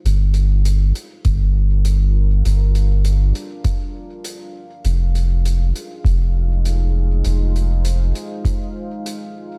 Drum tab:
HH |xxxxx-x-|xxxxx-x-|xxxxx-x-|xxxxx-x-|
BD |----o---|----o---|----o---|----o---|